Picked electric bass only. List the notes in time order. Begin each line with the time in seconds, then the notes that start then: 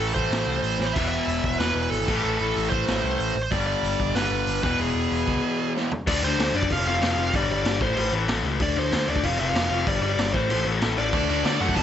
0.00 A1
0.16 A1
0.31 A1
0.47 C2
0.63 A1
0.80 A1
0.96 E1
1.28 E1
1.44 E1
1.60 E1
1.75 E1
1.92 G#1
2.08 A1
2.24 A1
2.41 A1
2.57 A1
2.72 A1
2.88 A1
3.04 C2
3.19 A1
3.35 A1
3.52 G1
3.83 G1
3.99 G1
4.14 G1
4.31 G1
4.47 G1
4.63 E1
4.80 E1
4.95 E1
5.12 E1
5.27 C#2
6.07 D2
6.23 D2
6.38 D2
6.54 F#2
6.70 F1
6.86 F1
7.01 F1
7.17 F1
7.33 G1
7.49 G1
7.65 G1
7.81 A1
7.97 A1
8.12 A1
8.28 A1
8.44 C#2
8.60 D2
8.76 D2
8.92 D2
9.08 D2
9.23 F1
9.39 F1
9.54 F1
9.70 F1
9.87 G1
10.02 G1
10.18 G1
10.34 A1
10.50 A1
10.66 A1
10.82 A1
10.98 A1
11.13 D2
11.29 D2
11.45 D2
11.61 F#2
11.76 F1